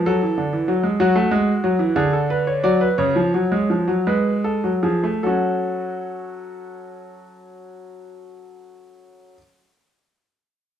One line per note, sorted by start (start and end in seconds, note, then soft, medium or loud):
0.06 0.20 F#3 medium
0.06 0.97 A4 medium
0.23 0.37 E3 medium
0.38 0.52 D3 medium
0.53 0.67 E3 medium
0.68 0.83 F#3 medium
0.83 0.99 G#3 medium
1.00 1.15 F#3 loud
1.00 1.94 F#4 medium
1.16 1.31 A3 medium
1.31 1.51 G#3 medium
1.64 1.80 F#3 medium
1.79 1.96 E3 medium
1.96 2.62 D3 loud
1.96 2.12 G#4 medium
2.13 2.29 A4 medium
2.30 2.46 B4 medium
2.47 2.63 C#5 medium
2.64 2.85 F#3 medium
2.64 2.80 D5 medium
2.81 2.98 B4 medium
2.98 3.15 C#3 medium
2.98 4.03 C#5 medium
3.16 3.33 F3 medium
3.34 3.51 F#3 medium
3.52 3.69 G#3 medium
3.70 3.87 F3 medium
3.88 4.06 F#3 medium
4.07 4.63 G#3 medium
4.07 4.31 B4 medium
4.44 4.69 A4 medium
4.64 4.83 F#3 medium
4.83 5.03 F3 medium
4.83 5.08 G#4 medium
5.04 5.23 A3 medium
5.23 9.33 F#3 medium
5.23 9.36 C#4 medium
5.23 9.36 F#4 medium
5.23 9.33 A4 medium